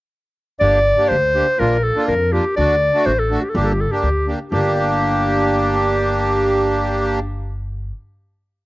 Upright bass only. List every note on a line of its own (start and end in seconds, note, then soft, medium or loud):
0.61 0.90 G1 medium
1.11 1.40 D2 medium
1.60 1.89 A#1 medium
2.08 2.37 F2 medium
2.58 2.87 D2 medium
3.06 3.35 A1 medium
3.55 3.84 G1 medium
4.03 4.32 D2 medium
4.52 7.90 G1 medium